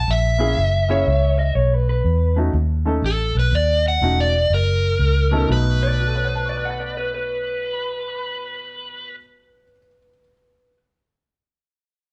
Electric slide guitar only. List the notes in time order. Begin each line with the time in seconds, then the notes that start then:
0.11 E5
3.06 A4
3.39 B4
3.55 D5
3.88 F#5
4.20 D5
4.54 A#4
5.52 B4